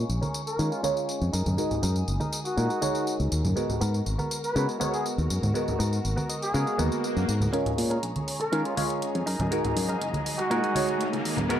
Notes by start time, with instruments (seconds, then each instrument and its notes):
Already playing: clav G#3 C#4 F4 A#4, violin section G#5 C#6
0.09 fingered electric bass A#1, muted clean electric guitar stroke, tambourine
0.21 clean electric guitar C#4 G#4 A#4, tambourine, high conga
0.34 tambourine
0.47 trumpet section A#4, tambourine
0.58 fingered electric bass D#3, clav G#3 C#4 F4 A#4, muted clean electric guitar stroke, tambourine
0.71 trumpet section F4, muted clean electric guitar stroke, tambourine
0.83 clav G#3 C#4 F4 C#5, clean electric guitar C#4 G#4 A#4, trumpet section F4, tambourine, high conga
0.97 tambourine
1.09 tambourine
1.21 fingered electric bass F2, tambourine
1.33 fingered electric bass F#2, clean electric guitar D#4 G#4 A#4, violin section A#4 D#6, tambourine
1.46 fingered electric bass F#2, tambourine, high conga, low conga
1.57 clav G#3 D#4 F#4 A#4, tambourine
1.71 tambourine, low conga
1.82 fingered electric bass F#2, clean electric guitar D#4 G#4 A#4, tambourine
1.96 tambourine
2.07 fingered electric bass F#1, muted clean electric guitar stroke, tambourine
2.20 clean electric guitar D#4 G#4 A#4, tambourine, high conga
2.33 tambourine
2.45 trumpet section F#4, tambourine
2.57 fingered electric bass A#2, clav G#3 D#4 F#4 A#4, muted clean electric guitar stroke, tambourine
2.69 muted clean electric guitar stroke, tambourine
2.81 clav G#3 D#4 F#4 C#5, clean electric guitar D#4 G#4 A#4, tambourine, high conga
2.95 tambourine
3.07 tambourine
3.20 fingered electric bass C#2, tambourine
3.31 fingered electric bass D#2, muted clean electric guitar stroke, tambourine
3.44 fingered electric bass F#2, tambourine, high conga, low conga
3.56 clav G#3 B3 F#4 A#4, violin section F#4, tambourine
3.70 tambourine, low conga
3.81 fingered electric bass G#2, clean electric guitar B3 F#4 A#4, tambourine
3.94 tambourine
4.05 fingered electric bass G#1, muted clean electric guitar stroke, tambourine
4.18 clean electric guitar B3 F#4 A#4, tambourine, high conga
4.31 tambourine
4.44 trumpet section B4, tambourine
4.55 fingered electric bass C#3, clav G#3 B3 F#4 A#4, muted clean electric guitar stroke, tambourine
4.68 muted clean electric guitar stroke, tambourine
4.80 clav G#3 B3 F#4, clean electric guitar B3 F#4 A#4, trumpet section C#5, tambourine, high conga
4.93 trumpet section G#4, tambourine
5.06 tambourine
5.18 fingered electric bass D#2, tambourine
5.29 fingered electric bass F#2, muted clean electric guitar stroke, tambourine
5.42 fingered electric bass G#2, tambourine, high conga, low conga
5.54 clav G#3 B3 F#4 A#4, tambourine
5.68 tambourine, low conga
5.79 fingered electric bass G#2, clean electric guitar B3 F#4 A#4, tambourine
5.92 tambourine
6.04 fingered electric bass G#1, muted clean electric guitar stroke, tambourine
6.17 clean electric guitar B3 F#4 A#4, tambourine, high conga
6.29 clean electric guitar D#5, tambourine
6.42 trumpet section G#4, tambourine
6.54 fingered electric bass C#3, clav G#3 B3 F#4 A#4, clean electric guitar F5, muted clean electric guitar stroke, tambourine, swell
6.66 muted clean electric guitar stroke, tambourine
6.78 fingered electric bass D#2, clav G#3 B3 F#4, clean electric guitar B3 F#4 A#4, tambourine, high conga
6.92 tambourine
7.04 clean electric guitar F#5, tambourine
7.17 fingered electric bass F#2, tambourine
7.28 fingered electric bass G#2, muted clean electric guitar stroke, tambourine
7.40 tambourine, high conga, low conga
7.53 clav G#3 C#4 F4 A#4, clean electric guitar C#4 G#4 A#4, violin section G#4 C#5 A#5, closed hi-hat, tambourine, riser
7.66 closed hi-hat, low conga
7.78 fingered electric bass A#2, open hi-hat, tambourine
7.90 clean electric guitar C#4 G#4 A#4, closed hi-hat, tambourine
8.03 fingered electric bass A#1, closed hi-hat, tambourine
8.15 muted clean electric guitar stroke, closed hi-hat, high conga
8.27 muted clean electric guitar stroke, open hi-hat, tambourine
8.40 trumpet section A#4, muted clean electric guitar stroke, closed hi-hat, tambourine
8.52 fingered electric bass D#3, clav G#3 C#4 F4 A#4, clean electric guitar C#4 G#4 A#4, closed hi-hat
8.65 trumpet section F4, closed hi-hat
8.77 clav G#3 C#4 F4 C#5, trumpet section F4, open hi-hat, tambourine, high conga
8.90 closed hi-hat, tambourine
9.02 closed hi-hat, tambourine
9.15 fingered electric bass F2, closed hi-hat
9.26 fingered electric bass F#2, clean electric guitar D#4 G#4 A#4, violin section D#5, open hi-hat, tambourine
9.39 fingered electric bass F#2, closed hi-hat, tambourine, high conga, low conga
9.51 clav G#3 D#4 F#4 A#4, closed hi-hat, tambourine
9.65 closed hi-hat, low conga
9.76 fingered electric bass F#2, open hi-hat, tambourine
9.89 clean electric guitar D#4 G#4 A#4, closed hi-hat, tambourine
10.01 fingered electric bass F#1, closed hi-hat, tambourine
10.13 muted clean electric guitar stroke, closed hi-hat, high conga
10.26 muted clean electric guitar stroke, open hi-hat, tambourine
10.38 trumpet section F#4, muted clean electric guitar stroke, closed hi-hat, tambourine
10.50 fingered electric bass A#2, clav G#3 D#4 F#4 A#4, clean electric guitar D#4 G#4 A#4, closed hi-hat, tambourine
10.64 closed hi-hat
10.75 clav G#3 D#4 F#4 C#5, open hi-hat, tambourine, high conga
10.89 closed hi-hat, tambourine
11.01 closed hi-hat, tambourine
11.13 fingered electric bass C#2, closed hi-hat
11.25 fingered electric bass D#2, open hi-hat, tambourine
11.37 fingered electric bass F#2, closed hi-hat, tambourine, high conga, low conga
11.49 clav G#3 B3 F#4 A#4, clean electric guitar B3 F#4 A#4, violin section B3 F#4, closed hi-hat, tambourine